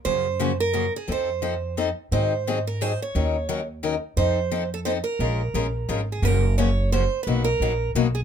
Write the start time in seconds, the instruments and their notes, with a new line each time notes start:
0.05 upright bass F#2, steel-string acoustic guitar C#3 F3 A#3 C#4 F#4 C5
0.40 steel-string acoustic guitar C#3 F3 A#3 C#4 F#4
0.60 steel-string acoustic guitar A#4
0.73 steel-string acoustic guitar C#3 F3 A#3 C#4 F#4
0.96 steel-string acoustic guitar G#4
1.08 upright bass F2, steel-string acoustic guitar F3 C4 D#4 A4
1.12 steel-string acoustic guitar C5
1.42 steel-string acoustic guitar F3 C4 D#4 A4
1.77 steel-string acoustic guitar F3 C4 D#4 A4
2.12 upright bass G#2, steel-string acoustic guitar D#3 F#3 C4 D#4 G#4 C5
2.47 steel-string acoustic guitar D#3 F#3 C4 D#4 G#4
2.67 steel-string acoustic guitar A#4
2.81 steel-string acoustic guitar D#3 F#3 C4 D#4 G#4 C5
3.02 steel-string acoustic guitar C#5
3.15 upright bass D#2, steel-string acoustic guitar D#3 F#3 C#4 D#4 A#4
3.49 steel-string acoustic guitar D#3 F#3 C#4 D#4 A#4
3.83 steel-string acoustic guitar D#3 F#3 C#4 D#4 A#4
4.17 upright bass F2, steel-string acoustic guitar F3 C4 D#4 A4 C5
4.51 steel-string acoustic guitar F3 C4 D#4 A4
4.74 steel-string acoustic guitar A4
4.85 steel-string acoustic guitar F3 C4 D#4 A4 C5
5.04 steel-string acoustic guitar A#4
5.19 upright bass A#1, steel-string acoustic guitar F3 G#3 C#4 F4 A#4
5.54 upright bass A#1, steel-string acoustic guitar F3 G#3 C#4 F4 A#4
5.89 upright bass G#1, steel-string acoustic guitar F3 G#3 C#4 F4 A#4
6.12 steel-string acoustic guitar G#4
6.22 upright bass F#1, steel-string acoustic guitar C#3 F3 A#3 C#4 F#4 A#4
6.58 steel-string acoustic guitar C#3 F3 A#3 C#4 F#4 C#5
6.92 steel-string acoustic guitar C#3 F3 A#3 C#4 F#4 C5
7.23 upright bass B1, steel-string acoustic guitar B4
7.27 steel-string acoustic guitar B2 F#3 A#3 D#4 F#4
7.44 steel-string acoustic guitar A#4
7.60 upright bass A#1, steel-string acoustic guitar B2 F#3 A#3 D#4 F#4
7.95 upright bass B1, steel-string acoustic guitar B2 F#3 A#3 D#4 F#4
8.15 steel-string acoustic guitar G#4